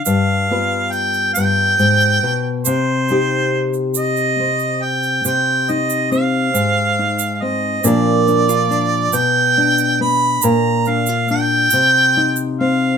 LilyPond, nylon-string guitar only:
\new Staff \with { instrumentName = "Nylon-string guitar" } { \time 6/8 \key c \minor \tempo 4. = 46 << { r8 <b f' b'>2~ <b f' b'>8 | r8 <c' ees' g'>4. c'4 | r8 ees'8 c'8 r8 ees'8 c'8 | <f d' f' bes'>8 d'16 f'16 d'8 r8 d'8 b8 |
r8 d'16 f'16 d'8 r8 ees'8 c'8 | } \\ { g,4. g,8 aes,8 b,8 | c2. | c4. aes,4. | bes,4. b,4. |
bes,4. c4. | } >> }